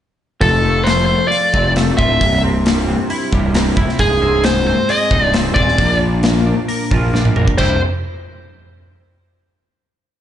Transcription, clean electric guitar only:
0.41 F2
0.65 A3
0.86 F3
1.09 A3
1.31 F4
1.53 C4
1.76 A3
1.99 F4
2.21 C2
2.43 C3
2.65 G2
2.88 C3
3.10 E4
3.32 G3
3.54 C3
3.77 E4
3.99 G#2
4.22 C4
4.44 G#3
4.67 C4
4.89 G#4
5.11 D#4
5.33 C4
5.56 G#4
5.78 A#2
6.01 D4
6.24 A#3
6.46 D4
6.68 A#4
6.91 F4
7.14 D4
7.36 A#4
7.58 C2 G2 C3 G3 E4

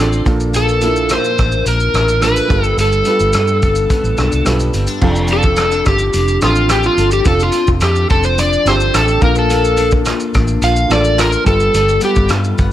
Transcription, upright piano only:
Already playing: F3
0.00 C4 D4 A4
0.25 F3 A#3 D4 A4
0.81 F3 A#3 D4 E4
2.21 F3 A#3 D4 A#4
2.48 G3 B3 F4 A4
3.06 G3 B3 F4 A4
4.45 G3 B3 F4 A4
5.01 F3 C4 D4 A4
6.42 F3 C4 D4 A4
7.25 F3 C4 D4 A4
8.65 F3 C4 D4 G4
9.22 F3 A#3 D4 A4
10.89 F3 A#3 D4 A4
11.45 G3 B3 F4 A4

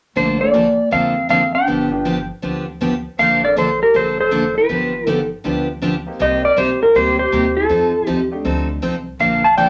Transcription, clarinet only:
0.16 A3
0.40 A#3
0.91 C4
1.30 C4
1.54 D4
3.20 C5
3.44 A#4
3.58 A4
3.83 G4
3.97 A4
4.20 A4
4.58 F4
5.10 D#4
6.21 C5
6.44 A#4
6.58 G4
6.82 F4
6.95 G4
7.19 G4
7.56 F4
8.09 D#4
9.20 A#4
9.44 F5
9.57 D5

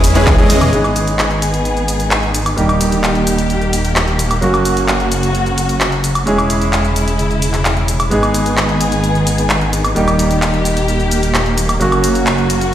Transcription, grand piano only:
Already playing: G#3 C#4 E4 G#4
0.14 G#3 C#4 E4 G#4
0.72 G#3 B3 D#4 G#4
2.56 G3 A#3 D#4 G4
4.41 F#3 A#3 C#4 F#4
6.26 G#3 C#4 E4 G#4
8.10 G#3 B3 D#4 G#4
9.95 G3 A#3 D#4 G4
11.80 F#3 A#3 C#4 F#4

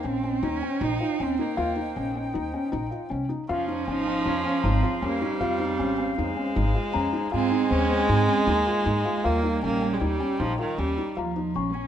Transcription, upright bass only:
0.05 A#1
0.43 D#2
0.81 A#1
1.20 D#2
1.58 D#2
1.97 A#1
2.35 D#2
2.73 A#1
3.11 C2
3.49 F2
3.88 G#1
4.26 F2
4.64 G#1
5.02 F2
5.41 F2
5.80 G#1
6.18 F2
6.56 G#1
6.95 F2
7.34 G#2
7.71 D#2
8.09 G#2
8.47 D#2
8.86 G#2
9.25 D#2
9.64 A#1
10.01 D#2
10.40 A#1
10.78 D#2
11.17 D#2
11.55 A#1

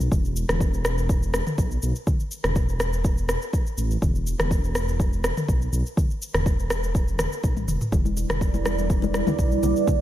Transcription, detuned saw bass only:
0.00 B1
0.12 E1
0.49 E1
1.58 B1
1.83 B1
2.44 E1
3.78 A1
4.02 E1
4.39 E1
5.48 B1
5.72 B1
6.34 E1
7.44 B1
7.56 A1
7.68 E1
7.92 E1
8.30 E1
9.39 B1
9.63 B1

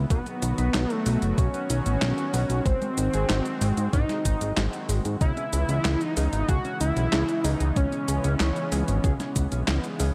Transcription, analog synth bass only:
0.10 B1
0.43 B1
0.58 B1
0.74 B1
1.06 B1
1.22 F#1
1.38 B1
1.70 B1
1.86 A1
2.02 B1
2.34 B1
2.50 B1
2.66 G#1
2.98 G#1
3.14 G#1
3.29 G#1
3.61 G#1
3.77 G#2
3.93 G#1
4.25 G#1
4.41 G#1
4.57 G#1
4.89 G#1
5.05 G#2
5.21 C#2
5.53 C#2
5.69 C#2
5.85 C#2
6.17 C#2
6.33 G#1
6.49 C#2
6.81 C#2
6.97 B1
7.13 C#2
7.44 C#2
7.60 C#2
7.76 C#2
8.08 C#2
8.24 C#2
8.40 C#2
8.72 C#2
8.88 G#1
9.04 C#2
9.36 C#2
9.52 B1
9.68 C#2
10.00 C#2

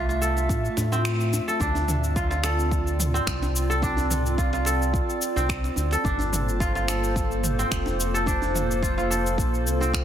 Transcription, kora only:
Already playing: C4 D4 A4
0.09 F4
0.22 A4
0.92 C4
1.48 A4
1.61 D4
2.16 F4
2.30 F4
2.44 A4
3.14 C4
3.70 A4
3.83 D4
4.38 F4
4.53 F4
4.66 A4
5.36 C4
5.92 A4
6.05 D4
6.60 F4
6.76 F4
6.88 A4
7.59 C4
8.14 A4
8.27 D4
8.83 F4
8.98 F4
9.10 A4
9.81 C4

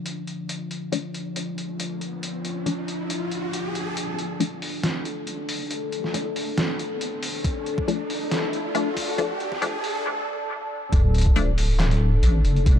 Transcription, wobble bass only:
3.96 D1
5.27 A1
5.49 F1
5.92 A1
6.14 C2
6.36 D1
8.10 D1
8.96 D1
9.18 D1
10.92 D1
12.23 A1
12.45 F1

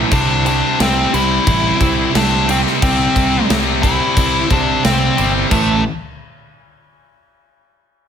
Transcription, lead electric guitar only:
0.13 D4
0.47 D4
0.82 C4
1.14 E4
2.17 D4
2.50 C4
2.83 C4
3.83 E4
4.52 D4
4.85 C4
5.51 A3

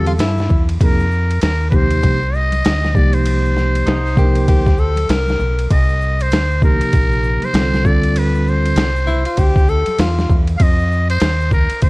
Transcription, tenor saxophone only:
0.07 F4
0.20 E4
3.86 D#4
4.18 G4
4.48 G4
4.79 A4
5.10 A#4
9.07 E4
9.26 F4
9.39 G4
9.69 A4
10.00 F4

